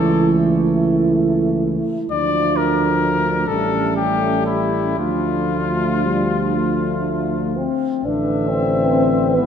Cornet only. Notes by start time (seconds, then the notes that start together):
Already playing: A4
2.11 D5
2.57 A#4
3.48 A4
3.96 G4
4.46 E4
4.99 F4
8.04 E5
9.36 E5